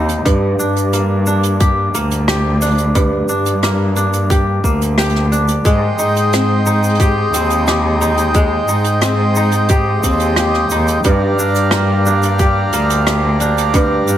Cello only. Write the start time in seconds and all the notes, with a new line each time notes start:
Already playing: D#2
0.26 G2
0.59 G2
1.94 D2
3.29 G2
4.64 D2
5.65 G#2
5.99 G#2
7.33 D#2
8.68 G#2
10.03 D#2
10.71 D#2
11.05 G2
11.39 G2
12.73 D2
14.08 G2